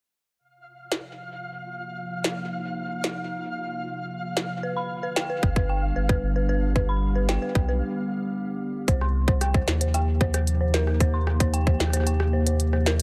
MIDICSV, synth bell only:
0, 0, Header, 1, 2, 480
1, 0, Start_track
1, 0, Key_signature, -3, "minor"
1, 0, Tempo, 530973
1, 348, Time_signature, 4, 2, 24, 8
1, 11770, End_track
2, 0, Start_track
2, 0, Title_t, "Synth bell"
2, 0, Program_c, 0, 98
2, 4188, Note_on_c, 0, 71, 78
2, 4257, Note_off_c, 0, 71, 0
2, 4308, Note_on_c, 0, 83, 73
2, 4411, Note_off_c, 0, 83, 0
2, 4548, Note_on_c, 0, 71, 75
2, 4617, Note_off_c, 0, 71, 0
2, 4668, Note_on_c, 0, 79, 97
2, 4709, Note_off_c, 0, 79, 0
2, 4788, Note_on_c, 0, 71, 74
2, 4857, Note_off_c, 0, 71, 0
2, 5028, Note_on_c, 0, 71, 74
2, 5097, Note_off_c, 0, 71, 0
2, 5148, Note_on_c, 0, 79, 78
2, 5217, Note_off_c, 0, 79, 0
2, 5388, Note_on_c, 0, 71, 75
2, 5491, Note_off_c, 0, 71, 0
2, 5508, Note_on_c, 0, 71, 75
2, 5577, Note_off_c, 0, 71, 0
2, 5748, Note_on_c, 0, 71, 73
2, 5817, Note_off_c, 0, 71, 0
2, 5868, Note_on_c, 0, 71, 100
2, 5909, Note_off_c, 0, 71, 0
2, 6108, Note_on_c, 0, 71, 78
2, 6177, Note_off_c, 0, 71, 0
2, 6228, Note_on_c, 0, 83, 73
2, 6331, Note_off_c, 0, 83, 0
2, 6468, Note_on_c, 0, 71, 74
2, 6537, Note_off_c, 0, 71, 0
2, 6588, Note_on_c, 0, 79, 94
2, 6629, Note_off_c, 0, 79, 0
2, 6708, Note_on_c, 0, 71, 72
2, 6777, Note_off_c, 0, 71, 0
2, 6948, Note_on_c, 0, 71, 74
2, 7017, Note_off_c, 0, 71, 0
2, 8028, Note_on_c, 0, 72, 77
2, 8097, Note_off_c, 0, 72, 0
2, 8148, Note_on_c, 0, 84, 73
2, 8251, Note_off_c, 0, 84, 0
2, 8388, Note_on_c, 0, 72, 73
2, 8457, Note_off_c, 0, 72, 0
2, 8508, Note_on_c, 0, 79, 97
2, 8549, Note_off_c, 0, 79, 0
2, 8628, Note_on_c, 0, 72, 75
2, 8697, Note_off_c, 0, 72, 0
2, 8868, Note_on_c, 0, 72, 75
2, 8937, Note_off_c, 0, 72, 0
2, 8988, Note_on_c, 0, 79, 79
2, 9057, Note_off_c, 0, 79, 0
2, 9228, Note_on_c, 0, 72, 75
2, 9331, Note_off_c, 0, 72, 0
2, 9347, Note_on_c, 0, 72, 73
2, 9417, Note_off_c, 0, 72, 0
2, 9588, Note_on_c, 0, 72, 74
2, 9657, Note_off_c, 0, 72, 0
2, 9708, Note_on_c, 0, 70, 97
2, 9749, Note_off_c, 0, 70, 0
2, 9948, Note_on_c, 0, 72, 78
2, 10017, Note_off_c, 0, 72, 0
2, 10068, Note_on_c, 0, 84, 74
2, 10171, Note_off_c, 0, 84, 0
2, 10308, Note_on_c, 0, 72, 76
2, 10377, Note_off_c, 0, 72, 0
2, 10428, Note_on_c, 0, 79, 97
2, 10469, Note_off_c, 0, 79, 0
2, 10548, Note_on_c, 0, 72, 73
2, 10617, Note_off_c, 0, 72, 0
2, 10788, Note_on_c, 0, 72, 77
2, 10857, Note_off_c, 0, 72, 0
2, 10908, Note_on_c, 0, 79, 79
2, 10977, Note_off_c, 0, 79, 0
2, 11148, Note_on_c, 0, 72, 73
2, 11251, Note_off_c, 0, 72, 0
2, 11268, Note_on_c, 0, 72, 75
2, 11337, Note_off_c, 0, 72, 0
2, 11509, Note_on_c, 0, 72, 75
2, 11577, Note_off_c, 0, 72, 0
2, 11628, Note_on_c, 0, 70, 97
2, 11670, Note_off_c, 0, 70, 0
2, 11770, End_track
0, 0, End_of_file